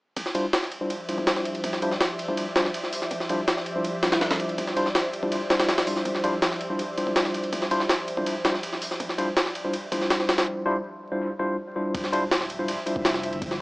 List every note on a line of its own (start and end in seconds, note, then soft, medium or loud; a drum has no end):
0.16 10.43 F3 medium
0.16 10.43 G4 medium
0.16 10.43 C5 medium
0.16 10.43 D5 medium
0.16 10.43 E5 medium
0.16 kick loud
0.16 ride medium
0.26 snare soft
0.35 0.45 G3 medium
0.35 0.45 D4 medium
0.35 0.45 E4 medium
0.35 0.45 F4 medium
0.35 0.45 C5 loud
0.35 ride medium
0.53 snare loud
0.53 ride medium
0.63 snare soft
0.72 ride medium
0.81 0.91 G3 medium
0.81 0.91 D4 medium
0.81 0.91 E4 medium
0.81 0.91 F4 medium
0.81 0.91 C5 medium
0.90 ride medium
1.09 1.80 G3 medium
1.09 1.80 D4 medium
1.09 1.80 E4 medium
1.09 1.80 F4 medium
1.09 1.80 C5 medium
1.09 ride medium
1.18 kick medium
1.27 snare loud
1.27 ride medium
1.36 snare soft
1.45 ride medium
1.55 ride soft
1.64 kick loud
1.64 ride medium
1.73 snare soft
1.82 1.93 G3 medium
1.82 1.93 D4 medium
1.82 1.93 E4 medium
1.82 1.93 F4 medium
1.82 1.93 C5 loud
1.82 ride medium
1.91 snare soft
2.01 snare loud
2.01 ride medium
2.19 ride medium
2.28 2.45 G3 medium
2.28 2.45 D4 medium
2.28 2.45 E4 medium
2.28 2.45 F4 medium
2.28 2.45 C5 medium
2.28 kick medium
2.37 ride medium
2.56 2.66 G3 medium
2.56 2.66 D4 medium
2.56 2.66 E4 medium
2.56 2.66 F4 medium
2.56 2.66 C5 medium
2.56 snare loud
2.56 ride medium
2.65 snare soft
2.74 ride medium
2.84 snare soft
2.93 open hi-hat medium
3.02 snare soft
3.11 kick loud
3.11 ride medium
3.20 snare soft
3.29 3.40 G3 medium
3.29 3.40 D4 medium
3.29 3.40 E4 medium
3.29 3.40 F4 medium
3.29 3.40 C5 loud
3.29 ride medium
3.48 snare loud
3.48 ride medium
3.57 snare soft
3.66 ride medium
3.76 3.86 G3 medium
3.76 3.86 D4 medium
3.76 3.86 E4 medium
3.76 3.86 F4 medium
3.76 3.86 C5 medium
3.84 ride medium
4.03 4.74 G3 medium
4.03 4.74 D4 medium
4.03 4.74 E4 medium
4.03 4.74 F4 medium
4.03 4.74 C5 medium
4.03 snare loud
4.03 ride medium
4.12 snare loud
4.12 ride medium
4.21 snare loud
4.21 ride medium
4.31 snare loud
4.31 ride medium
4.40 ride medium
4.49 ride soft
4.58 kick loud
4.58 ride medium
4.67 snare soft
4.76 4.87 G3 medium
4.76 4.87 D4 medium
4.76 4.87 E4 medium
4.76 4.87 F4 medium
4.76 4.87 C5 loud
4.76 ride medium
4.86 snare soft
4.95 snare loud
4.95 ride medium
5.13 ride medium
5.23 5.39 G3 medium
5.23 5.39 D4 medium
5.23 5.39 E4 medium
5.23 5.39 F4 medium
5.23 5.39 C5 medium
5.23 kick medium
5.32 ride medium
5.50 5.67 G3 medium
5.50 5.67 D4 medium
5.50 5.67 E4 medium
5.50 5.67 F4 medium
5.50 5.67 C5 medium
5.50 snare loud
5.50 ride medium
5.60 snare loud
5.60 ride medium
5.69 snare loud
5.69 ride medium
5.78 snare loud
5.78 ride medium
5.87 6.22 G3 medium
5.87 6.22 D4 medium
5.87 6.22 E4 medium
5.87 6.22 F4 medium
5.87 6.22 C5 medium
5.87 open hi-hat medium
5.96 snare soft
6.05 kick loud
6.05 ride medium
6.15 snare soft
6.24 6.34 G3 medium
6.24 6.34 D4 medium
6.24 6.34 E4 medium
6.24 6.34 F4 medium
6.24 6.34 C5 loud
6.24 ride medium
6.42 snare loud
6.42 ride medium
6.52 snare soft
6.61 ride medium
6.70 6.80 G3 medium
6.70 6.80 D4 medium
6.70 6.80 E4 medium
6.70 6.80 F4 medium
6.70 6.80 C5 medium
6.79 ride medium
6.97 7.69 G3 medium
6.97 7.69 D4 medium
6.97 7.69 E4 medium
6.97 7.69 F4 medium
6.97 7.69 C5 medium
6.97 ride medium
7.07 kick medium
7.16 snare loud
7.16 ride medium
7.25 snare soft
7.34 ride medium
7.44 ride soft
7.53 kick loud
7.53 ride medium
7.62 snare soft
7.71 7.82 G3 medium
7.71 7.82 D4 medium
7.71 7.82 E4 medium
7.71 7.82 F4 medium
7.71 7.82 C5 loud
7.71 ride medium
7.80 snare soft
7.89 snare loud
7.89 ride medium
8.08 ride medium
8.17 8.34 G3 medium
8.17 8.34 D4 medium
8.17 8.34 E4 medium
8.17 8.34 F4 medium
8.17 8.34 C5 medium
8.17 kick medium
8.26 ride medium
8.44 8.55 G3 medium
8.44 8.55 D4 medium
8.44 8.55 E4 medium
8.44 8.55 F4 medium
8.44 8.55 C5 medium
8.44 snare loud
8.44 ride medium
8.54 snare soft
8.63 ride medium
8.73 snare soft
8.82 open hi-hat medium
8.91 snare soft
9.00 kick loud
9.00 ride medium
9.09 snare soft
9.18 9.29 G3 medium
9.18 9.29 D4 medium
9.18 9.29 E4 medium
9.18 9.29 F4 medium
9.18 9.29 C5 loud
9.18 ride medium
9.37 snare loud
9.37 ride medium
9.46 snare soft
9.55 ride medium
9.64 9.75 G3 medium
9.64 9.75 D4 medium
9.64 9.75 E4 medium
9.64 9.75 F4 medium
9.64 9.75 C5 medium
9.73 ride medium
9.92 10.63 G3 medium
9.92 10.63 D4 medium
9.92 10.63 E4 medium
9.92 10.63 F4 medium
9.92 10.63 C5 medium
9.92 kick loud
9.92 ride medium
10.01 snare soft
10.10 snare loud
10.10 ride medium
10.20 snare soft
10.29 snare loud
10.29 ride medium
10.38 snare loud
10.38 ride medium
10.66 10.76 G3 loud
10.66 10.76 D4 medium
10.66 10.76 E4 medium
10.66 10.76 F4 medium
10.66 10.76 C5 loud
11.12 11.28 G3 medium
11.12 11.28 D4 medium
11.12 11.28 E4 medium
11.12 11.28 F4 medium
11.12 11.28 C5 medium
11.39 11.56 G3 medium
11.39 11.56 D4 medium
11.39 11.56 E4 medium
11.39 11.56 F4 medium
11.39 11.56 C5 medium
11.76 12.11 G3 medium
11.76 12.11 D4 medium
11.76 12.11 E4 medium
11.76 12.11 F4 medium
11.76 12.11 C5 medium
11.94 12.76 D1 loud
11.94 13.61 F3 medium
11.94 13.61 G4 medium
11.94 13.61 C5 medium
11.94 13.61 E5 medium
11.94 kick loud
11.94 ride medium
12.04 snare soft
12.13 12.23 G3 loud
12.13 12.23 D4 medium
12.13 12.23 E4 medium
12.13 12.23 F4 medium
12.13 12.23 C5 loud
12.13 ride medium
12.31 snare loud
12.31 ride medium
12.41 snare soft
12.50 ride medium
12.59 12.69 G3 medium
12.59 12.69 D4 medium
12.59 12.69 E4 medium
12.59 12.69 F4 medium
12.59 12.69 C5 medium
12.68 ride medium
12.86 13.58 G3 medium
12.86 13.58 D4 medium
12.86 13.58 E4 medium
12.86 13.58 F4 medium
12.86 13.58 C5 medium
12.86 ride medium
12.96 13.31 F1 medium
12.96 kick medium
13.05 snare loud
13.05 ride medium
13.14 snare soft
13.23 ride medium
13.33 13.61 G1 loud
13.33 ride soft
13.42 kick loud
13.42 ride medium
13.51 snare soft